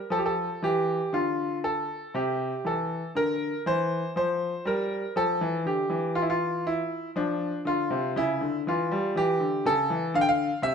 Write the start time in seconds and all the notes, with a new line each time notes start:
0.10 F3 A4
0.18 G4
0.26 A4
0.62 E3 G4
1.13 D3 F4
1.64 A4
2.14 C3 G4
2.65 E3 A4
3.15 D3 A#4
3.66 E3 C5
4.16 F3 C5
4.65 G3 A#4
5.16 F3 A4
5.41 E3
5.65 D3 G4
5.90 E3
6.15 F4
6.22 E4
6.30 F4
6.67 E4
7.16 F3 D4
7.65 D3 F4
7.90 C3
8.16 C#3 E4
8.41 D3
8.67 E3 F4
8.92 G3
9.16 E3 G4
9.40 D3
9.66 C#3 A4
9.90 E3
10.14 D3 F5
10.21 G5
10.29 F5
10.62 C3 E5